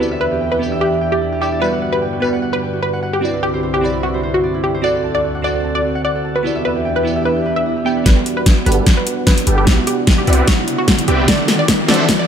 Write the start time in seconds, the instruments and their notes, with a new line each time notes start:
Already playing: harp F#4 A4 C5 F#5 A5
0.00 analog synth pad E2 E3 D4 G4, synth keys B3 E4 G4 D5, harp E4
0.11 harp E5
0.21 harp B4, synth pluck B4
0.32 harp G4
0.41 harp G5
0.52 harp E4, synth pluck B4
0.59 synth keys B3 E4 G4 D5, harp E4
0.72 harp E5
0.81 synth pluck G4, harp B4
0.92 harp G4
1.01 harp G5
1.12 synth pluck G4, harp D5
1.21 harp E4
1.32 harp G4
1.41 synth keys B3 E4 G4 D5, synth pluck G4, harp E5
1.52 harp D5
1.60 analog synth pad G2 D3, synth keys G3 B3 F#4, harp F#4, synth pluck B4
1.64 synth keys D5
1.72 harp F#5
1.82 harp F#5
1.93 harp G4, synth pluck B4
2.02 harp G5
2.13 harp F#4
2.20 synth keys G3 B3, harp F#4, synth pluck B4
2.24 synth keys D5
2.33 harp F#5
2.42 harp F#5
2.53 harp G4, synth pluck B4
2.62 harp G5
2.73 harp F#4
2.82 harp F#4, synth pluck B4
2.93 harp F#5
3.03 harp F#5
3.13 harp G4, synth pluck G4
3.21 analog synth pad C2 G2 E4, synth keys C4 E4 F#4 B4 D5, harp D5
3.33 harp E4
3.43 harp E4, synth pluck G4
3.54 harp C5
3.63 harp C5
3.74 harp F#4, synth pluck G4
3.81 synth keys C4 E4 F#4 B5, harp D5
3.85 synth keys D5
3.94 harp E4
4.03 harp E4, synth pluck F#4
4.14 harp C5
4.23 harp C5
4.34 harp F#4, synth pluck F#4
4.43 harp D5
4.54 harp E4
4.64 harp E4, synth pluck G4
4.74 harp C5
4.82 analog synth pad D2 C4, synth keys C4 F#4 A4, synth pluck D5, harp F#5
4.86 synth keys D5
4.95 harp A4
5.04 harp A5
5.15 harp F#4, synth pluck D5
5.24 harp F#4
5.35 harp F#5
5.42 synth keys C4 F#4 A4 D5, synth pluck D5, harp F#5
5.55 harp A4
5.64 harp A5
5.75 harp F#4, synth pluck D5
5.84 harp F#4
5.95 harp F#5
6.04 synth pluck D5, harp F#5
6.15 harp A4
6.25 harp A5
6.35 harp F#4, synth pluck B4
6.43 analog synth pad E2 E3 D4 G4, synth keys B3 E4 G4 D5, harp E4
6.55 harp E5
6.65 synth pluck B4, harp E5
6.76 harp G4
6.85 harp G5
6.96 harp E4, synth pluck B4
7.03 synth keys B3 E4 G4, harp E4
7.07 synth keys D5
7.16 harp E5
7.25 synth pluck B4, harp E5
7.36 harp G4
7.46 harp B4
7.56 harp B4, synth pluck E5
7.66 harp E4
7.77 harp G4
7.85 synth keys B3 E4 G4 D5, synth pluck G5, harp B5
7.97 harp B4
8.04 808-style bass G1, supersaw synth G3 G4 A4 B4 F#5, analog synth pad G3 D4 B4 F#5, synth keys B3 F#4 G4 D5, synth pluck B4, kick, snare, closed hi-hat, riser
8.26 closed hi-hat
8.37 synth pluck B4
8.46 kick, snare, closed hi-hat
8.64 808-style bass G1, supersaw synth G3 G4 A4 B4 F#5, synth keys B3 F#4 G4 D5, synth pluck B4, closed hi-hat
8.72 closed hi-hat
8.86 kick, snare, closed hi-hat
8.97 synth pluck B4
9.07 closed hi-hat
9.27 synth pluck B4, kick, snare, closed hi-hat
9.38 closed hi-hat
9.47 808-style bass G1, supersaw synth G3 G4 A4 B4 G5, closed hi-hat
9.58 synth pluck G4
9.65 808-style bass C2, analog synth pad C3 B3 E4, synth keys B3 E4 F#4, supersaw synth C4 G4 B4 D5 E5 F#5, kick, snare, closed hi-hat
9.69 synth keys D5
9.87 synth pluck G4, closed hi-hat
10.07 kick, snare, closed hi-hat
10.18 synth pluck G4
10.25 808-style bass C2, synth keys B3 E4 F#4, supersaw synth C4 G4 B4 D5 E5 F#5, closed hi-hat
10.29 synth keys D5, closed hi-hat
10.48 synth pluck F#4, kick, snare, closed hi-hat
10.68 closed hi-hat
10.78 synth pluck F#4
10.88 kick, snare, closed hi-hat
10.99 closed hi-hat
11.08 808-style bass C2, supersaw synth C4 G4 B4 D5 E5 G5, synth pluck G4, closed hi-hat
11.26 analog synth pad D3 A3 C4, synth keys C4 F#4 A4 D5, supersaw synth D4 A4 C5 E5 F#5, synth pluck D5, kick, snare, closed hi-hat
11.48 snare, closed hi-hat
11.59 synth pluck D5
11.68 kick, snare, closed hi-hat
11.87 808-style bass D1, synth keys C4 F#4 A4 D5, supersaw synth D4 A4 C5 E5 F#5, synth pluck D5, snare, closed hi-hat
11.94 closed hi-hat
12.09 kick, snare, closed hi-hat
12.19 synth pluck D5